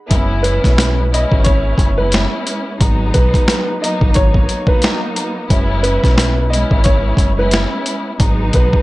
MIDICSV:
0, 0, Header, 1, 5, 480
1, 0, Start_track
1, 0, Tempo, 674157
1, 76, Time_signature, 4, 2, 24, 8
1, 6282, End_track
2, 0, Start_track
2, 0, Title_t, "Upright piano"
2, 0, Program_c, 0, 0
2, 304, Note_on_c, 0, 71, 70
2, 762, Note_off_c, 0, 71, 0
2, 811, Note_on_c, 0, 75, 73
2, 1020, Note_off_c, 0, 75, 0
2, 1026, Note_on_c, 0, 73, 89
2, 1385, Note_off_c, 0, 73, 0
2, 1408, Note_on_c, 0, 71, 81
2, 1503, Note_off_c, 0, 71, 0
2, 2235, Note_on_c, 0, 71, 71
2, 2687, Note_off_c, 0, 71, 0
2, 2720, Note_on_c, 0, 75, 71
2, 2934, Note_off_c, 0, 75, 0
2, 2956, Note_on_c, 0, 73, 92
2, 3310, Note_off_c, 0, 73, 0
2, 3333, Note_on_c, 0, 71, 75
2, 3426, Note_off_c, 0, 71, 0
2, 4151, Note_on_c, 0, 71, 79
2, 4605, Note_off_c, 0, 71, 0
2, 4628, Note_on_c, 0, 75, 71
2, 4848, Note_off_c, 0, 75, 0
2, 4873, Note_on_c, 0, 73, 86
2, 5229, Note_off_c, 0, 73, 0
2, 5260, Note_on_c, 0, 71, 74
2, 5350, Note_off_c, 0, 71, 0
2, 6088, Note_on_c, 0, 71, 73
2, 6282, Note_off_c, 0, 71, 0
2, 6282, End_track
3, 0, Start_track
3, 0, Title_t, "String section"
3, 0, Program_c, 1, 48
3, 66, Note_on_c, 1, 56, 91
3, 69, Note_on_c, 1, 59, 91
3, 72, Note_on_c, 1, 61, 84
3, 74, Note_on_c, 1, 64, 108
3, 742, Note_off_c, 1, 56, 0
3, 743, Note_off_c, 1, 59, 0
3, 745, Note_off_c, 1, 61, 0
3, 746, Note_off_c, 1, 64, 0
3, 791, Note_on_c, 1, 56, 96
3, 794, Note_on_c, 1, 59, 85
3, 798, Note_on_c, 1, 61, 91
3, 799, Note_on_c, 1, 64, 100
3, 1356, Note_off_c, 1, 56, 0
3, 1357, Note_off_c, 1, 59, 0
3, 1359, Note_off_c, 1, 61, 0
3, 1360, Note_off_c, 1, 64, 0
3, 1408, Note_on_c, 1, 56, 88
3, 1410, Note_on_c, 1, 59, 80
3, 1414, Note_on_c, 1, 61, 83
3, 1417, Note_on_c, 1, 64, 96
3, 1953, Note_off_c, 1, 56, 0
3, 1954, Note_off_c, 1, 59, 0
3, 1956, Note_off_c, 1, 61, 0
3, 1957, Note_off_c, 1, 64, 0
3, 1986, Note_on_c, 1, 54, 97
3, 1988, Note_on_c, 1, 56, 88
3, 1990, Note_on_c, 1, 59, 86
3, 1994, Note_on_c, 1, 63, 103
3, 2662, Note_off_c, 1, 54, 0
3, 2663, Note_off_c, 1, 56, 0
3, 2664, Note_off_c, 1, 59, 0
3, 2666, Note_off_c, 1, 63, 0
3, 2710, Note_on_c, 1, 54, 102
3, 2714, Note_on_c, 1, 58, 78
3, 2716, Note_on_c, 1, 59, 87
3, 2719, Note_on_c, 1, 63, 110
3, 3275, Note_off_c, 1, 54, 0
3, 3277, Note_off_c, 1, 58, 0
3, 3278, Note_off_c, 1, 59, 0
3, 3280, Note_off_c, 1, 63, 0
3, 3330, Note_on_c, 1, 54, 92
3, 3332, Note_on_c, 1, 58, 85
3, 3335, Note_on_c, 1, 59, 89
3, 3339, Note_on_c, 1, 63, 102
3, 3873, Note_off_c, 1, 54, 0
3, 3875, Note_off_c, 1, 58, 0
3, 3876, Note_off_c, 1, 59, 0
3, 3878, Note_off_c, 1, 63, 0
3, 3906, Note_on_c, 1, 56, 91
3, 3908, Note_on_c, 1, 59, 93
3, 3912, Note_on_c, 1, 61, 87
3, 3915, Note_on_c, 1, 64, 107
3, 4582, Note_off_c, 1, 56, 0
3, 4583, Note_off_c, 1, 59, 0
3, 4584, Note_off_c, 1, 61, 0
3, 4586, Note_off_c, 1, 64, 0
3, 4630, Note_on_c, 1, 56, 96
3, 4633, Note_on_c, 1, 59, 86
3, 4636, Note_on_c, 1, 61, 88
3, 4639, Note_on_c, 1, 64, 103
3, 5196, Note_off_c, 1, 56, 0
3, 5197, Note_off_c, 1, 59, 0
3, 5198, Note_off_c, 1, 61, 0
3, 5200, Note_off_c, 1, 64, 0
3, 5247, Note_on_c, 1, 56, 87
3, 5250, Note_on_c, 1, 59, 81
3, 5254, Note_on_c, 1, 61, 83
3, 5256, Note_on_c, 1, 64, 97
3, 5792, Note_off_c, 1, 56, 0
3, 5793, Note_off_c, 1, 59, 0
3, 5796, Note_off_c, 1, 61, 0
3, 5797, Note_off_c, 1, 64, 0
3, 5823, Note_on_c, 1, 54, 97
3, 5826, Note_on_c, 1, 56, 91
3, 5829, Note_on_c, 1, 59, 85
3, 5832, Note_on_c, 1, 63, 103
3, 6282, Note_off_c, 1, 54, 0
3, 6282, Note_off_c, 1, 56, 0
3, 6282, Note_off_c, 1, 59, 0
3, 6282, Note_off_c, 1, 63, 0
3, 6282, End_track
4, 0, Start_track
4, 0, Title_t, "Fingered electric bass"
4, 0, Program_c, 2, 33
4, 77, Note_on_c, 2, 30, 96
4, 412, Note_off_c, 2, 30, 0
4, 458, Note_on_c, 2, 35, 86
4, 882, Note_off_c, 2, 35, 0
4, 938, Note_on_c, 2, 32, 80
4, 1241, Note_off_c, 2, 32, 0
4, 1265, Note_on_c, 2, 30, 83
4, 1605, Note_off_c, 2, 30, 0
4, 1999, Note_on_c, 2, 32, 103
4, 2211, Note_off_c, 2, 32, 0
4, 2241, Note_on_c, 2, 35, 92
4, 2361, Note_off_c, 2, 35, 0
4, 2858, Note_on_c, 2, 32, 86
4, 2948, Note_off_c, 2, 32, 0
4, 2963, Note_on_c, 2, 32, 102
4, 3174, Note_off_c, 2, 32, 0
4, 3918, Note_on_c, 2, 30, 101
4, 4252, Note_off_c, 2, 30, 0
4, 4299, Note_on_c, 2, 35, 87
4, 4723, Note_off_c, 2, 35, 0
4, 4777, Note_on_c, 2, 32, 81
4, 5080, Note_off_c, 2, 32, 0
4, 5106, Note_on_c, 2, 30, 87
4, 5445, Note_off_c, 2, 30, 0
4, 5838, Note_on_c, 2, 32, 103
4, 6050, Note_off_c, 2, 32, 0
4, 6081, Note_on_c, 2, 35, 91
4, 6200, Note_off_c, 2, 35, 0
4, 6282, End_track
5, 0, Start_track
5, 0, Title_t, "Drums"
5, 76, Note_on_c, 9, 42, 89
5, 77, Note_on_c, 9, 36, 99
5, 147, Note_off_c, 9, 42, 0
5, 148, Note_off_c, 9, 36, 0
5, 314, Note_on_c, 9, 42, 66
5, 385, Note_off_c, 9, 42, 0
5, 457, Note_on_c, 9, 36, 86
5, 460, Note_on_c, 9, 38, 37
5, 463, Note_on_c, 9, 42, 55
5, 528, Note_off_c, 9, 36, 0
5, 532, Note_off_c, 9, 38, 0
5, 534, Note_off_c, 9, 42, 0
5, 557, Note_on_c, 9, 38, 110
5, 557, Note_on_c, 9, 40, 90
5, 570, Note_on_c, 9, 42, 106
5, 628, Note_off_c, 9, 38, 0
5, 629, Note_off_c, 9, 40, 0
5, 641, Note_off_c, 9, 42, 0
5, 812, Note_on_c, 9, 42, 72
5, 883, Note_off_c, 9, 42, 0
5, 937, Note_on_c, 9, 36, 95
5, 1008, Note_off_c, 9, 36, 0
5, 1029, Note_on_c, 9, 42, 82
5, 1043, Note_on_c, 9, 36, 100
5, 1100, Note_off_c, 9, 42, 0
5, 1114, Note_off_c, 9, 36, 0
5, 1265, Note_on_c, 9, 36, 86
5, 1274, Note_on_c, 9, 42, 72
5, 1337, Note_off_c, 9, 36, 0
5, 1345, Note_off_c, 9, 42, 0
5, 1509, Note_on_c, 9, 42, 79
5, 1525, Note_on_c, 9, 38, 116
5, 1525, Note_on_c, 9, 40, 95
5, 1580, Note_off_c, 9, 42, 0
5, 1596, Note_off_c, 9, 38, 0
5, 1596, Note_off_c, 9, 40, 0
5, 1756, Note_on_c, 9, 42, 80
5, 1827, Note_off_c, 9, 42, 0
5, 1998, Note_on_c, 9, 36, 97
5, 1998, Note_on_c, 9, 42, 87
5, 2069, Note_off_c, 9, 36, 0
5, 2070, Note_off_c, 9, 42, 0
5, 2236, Note_on_c, 9, 42, 68
5, 2241, Note_on_c, 9, 36, 93
5, 2307, Note_off_c, 9, 42, 0
5, 2312, Note_off_c, 9, 36, 0
5, 2378, Note_on_c, 9, 36, 89
5, 2384, Note_on_c, 9, 42, 55
5, 2449, Note_off_c, 9, 36, 0
5, 2455, Note_off_c, 9, 42, 0
5, 2477, Note_on_c, 9, 38, 114
5, 2477, Note_on_c, 9, 40, 89
5, 2490, Note_on_c, 9, 42, 99
5, 2548, Note_off_c, 9, 38, 0
5, 2549, Note_off_c, 9, 40, 0
5, 2561, Note_off_c, 9, 42, 0
5, 2733, Note_on_c, 9, 42, 73
5, 2804, Note_off_c, 9, 42, 0
5, 2857, Note_on_c, 9, 36, 97
5, 2929, Note_off_c, 9, 36, 0
5, 2949, Note_on_c, 9, 42, 81
5, 2963, Note_on_c, 9, 36, 97
5, 3020, Note_off_c, 9, 42, 0
5, 3034, Note_off_c, 9, 36, 0
5, 3093, Note_on_c, 9, 36, 88
5, 3164, Note_off_c, 9, 36, 0
5, 3196, Note_on_c, 9, 42, 69
5, 3267, Note_off_c, 9, 42, 0
5, 3324, Note_on_c, 9, 36, 104
5, 3395, Note_off_c, 9, 36, 0
5, 3430, Note_on_c, 9, 42, 78
5, 3446, Note_on_c, 9, 38, 119
5, 3447, Note_on_c, 9, 40, 96
5, 3501, Note_off_c, 9, 42, 0
5, 3517, Note_off_c, 9, 38, 0
5, 3518, Note_off_c, 9, 40, 0
5, 3676, Note_on_c, 9, 42, 78
5, 3748, Note_off_c, 9, 42, 0
5, 3918, Note_on_c, 9, 36, 103
5, 3918, Note_on_c, 9, 42, 85
5, 3989, Note_off_c, 9, 36, 0
5, 3989, Note_off_c, 9, 42, 0
5, 4156, Note_on_c, 9, 42, 67
5, 4227, Note_off_c, 9, 42, 0
5, 4298, Note_on_c, 9, 36, 88
5, 4303, Note_on_c, 9, 38, 37
5, 4305, Note_on_c, 9, 42, 53
5, 4369, Note_off_c, 9, 36, 0
5, 4374, Note_off_c, 9, 38, 0
5, 4376, Note_off_c, 9, 42, 0
5, 4398, Note_on_c, 9, 38, 115
5, 4398, Note_on_c, 9, 40, 92
5, 4410, Note_on_c, 9, 42, 104
5, 4469, Note_off_c, 9, 38, 0
5, 4470, Note_off_c, 9, 40, 0
5, 4481, Note_off_c, 9, 42, 0
5, 4653, Note_on_c, 9, 42, 73
5, 4724, Note_off_c, 9, 42, 0
5, 4777, Note_on_c, 9, 36, 93
5, 4848, Note_off_c, 9, 36, 0
5, 4869, Note_on_c, 9, 42, 84
5, 4883, Note_on_c, 9, 36, 102
5, 4940, Note_off_c, 9, 42, 0
5, 4954, Note_off_c, 9, 36, 0
5, 5105, Note_on_c, 9, 36, 88
5, 5115, Note_on_c, 9, 42, 72
5, 5176, Note_off_c, 9, 36, 0
5, 5186, Note_off_c, 9, 42, 0
5, 5349, Note_on_c, 9, 42, 78
5, 5365, Note_on_c, 9, 38, 119
5, 5366, Note_on_c, 9, 40, 91
5, 5420, Note_off_c, 9, 42, 0
5, 5436, Note_off_c, 9, 38, 0
5, 5437, Note_off_c, 9, 40, 0
5, 5595, Note_on_c, 9, 42, 78
5, 5667, Note_off_c, 9, 42, 0
5, 5836, Note_on_c, 9, 42, 89
5, 5837, Note_on_c, 9, 36, 99
5, 5908, Note_off_c, 9, 36, 0
5, 5908, Note_off_c, 9, 42, 0
5, 6074, Note_on_c, 9, 42, 70
5, 6080, Note_on_c, 9, 36, 91
5, 6146, Note_off_c, 9, 42, 0
5, 6151, Note_off_c, 9, 36, 0
5, 6217, Note_on_c, 9, 36, 89
5, 6282, Note_off_c, 9, 36, 0
5, 6282, End_track
0, 0, End_of_file